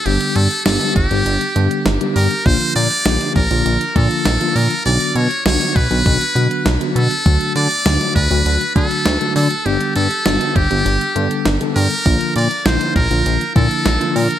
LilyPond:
<<
  \new Staff \with { instrumentName = "Muted trumpet" } { \time 4/4 \key g \lydian \tempo 4 = 100 g'8 a'8 a'8 g'4. r8 bes'8 | c''8 d''4 bes'4 a'4 bes'8 | d''8 cis''8 cis''8 b'4. r8 a'8~ | a'8 d''4 b'4 a'4 a'8 |
g'8 a'4 g'4. r8 bes'8~ | bes'8 d''8 c''8 bes'4 a'4 bes'8 | }
  \new Staff \with { instrumentName = "Tine electric piano" } { \time 4/4 \key g \lydian <d g b d' g'>8. r16 <d g b d' g'>8 r16 <d g b d' g'>8 r16 <d g b d' g'>8 r16 <d g b d' g'>8 r16 | <d f bes d' f'>8. r16 <d f bes d' g'>8 r16 <d f bes d' f'>8 r16 <d f bes d' f'>8 r16 <d f bes d' f'>8 r16 | <d fis b d' fis'>8. r16 <d fis b d' fis'>8 r16 <d fis b d' fis'>8 r16 <d fis b d' fis'>8 r16 <d fis b d' fis'>8 r16 | <d fis a d' fis'>8. r16 <d fis a d' fis'>8 r16 <d fis a d' fis'>8 r16 <d fis a d' fis'>8 r16 <d fis a d' fis'>8 r16 |
<d g b d' g'>8. r16 <d g b d' fis'>8 r16 <d g b d' g'>8 r16 <d g b d' a'>8 r16 <d g b d' a'>8 r16 | <d f bes d' f'>8. r16 <d f bes d' e'>8 r16 <d f bes d' f'>8 r16 <d f bes d' e'>8 r16 <d f bes d' f'>8 r16 | }
  \new Staff \with { instrumentName = "Analog synth bass" } { \clef bass \time 4/4 \key g \lydian g,,16 r16 g,16 r16 g,,16 r16 g,,16 g,,16 g,,16 r16 g,16 r16 g,,16 r16 g,16 r16 | bes,,16 r16 bes,16 r16 bes,,16 r16 bes,,16 bes,,16 bes,,16 r16 bes,16 r16 bes,,16 r16 bes,16 r16 | b,,16 r16 b,16 r16 b,,16 r16 b,,16 b,,16 b,,16 r16 b,16 r16 b,,16 r16 b,16 r16 | d,16 r16 d16 r16 d,16 r16 d,16 d,16 d,16 r16 d16 r16 d,16 r16 d16 r16 |
g,,16 r16 g,16 r16 g,,16 r16 g,,16 g,,16 g,,16 r16 g,16 r16 g,,16 r16 g,16 r16 | bes,,16 r16 bes,16 r16 bes,,16 r16 bes,,16 bes,,16 bes,,16 r16 bes,16 r16 bes,,16 r16 bes,16 r16 | }
  \new DrumStaff \with { instrumentName = "Drums" } \drummode { \time 4/4 hh16 hh16 hh16 hh16 <hh sn>16 hh16 <hh bd>16 hh16 hh16 hh16 hh16 hh16 <hh sn>16 hh16 hho16 hh16 | <hh bd>16 hh16 hh16 hh16 <hh sn>16 hh16 <hh bd>16 hh16 hh16 hh16 <hh bd>16 hh16 <hh sn>16 hh16 hho16 hh16 | hh16 hh16 hh16 hh16 <hh sn>16 hh16 <hh bd>16 hh16 <hh bd>16 hh16 hh16 hh16 <hh sn>16 hh16 hh16 hh16 | <hh bd>16 hh16 hh16 hh16 <hh sn>16 hh16 <hh bd>16 hh16 hh16 hh16 <hh bd>16 hh16 <hh sn>16 hh16 hho16 hh16 |
hh16 hh16 hh16 hh16 <hh sn>16 hh16 <hh bd>16 hh16 hh16 hh16 hh16 hh16 <hh sn>16 hh16 hho16 hh16 | <hh bd>16 hh16 hh16 hh16 <hh sn>16 hh16 <hh bd>16 hh16 hh16 hh16 <hh bd>16 hh16 <hh sn>16 hh16 hho16 hh16 | }
>>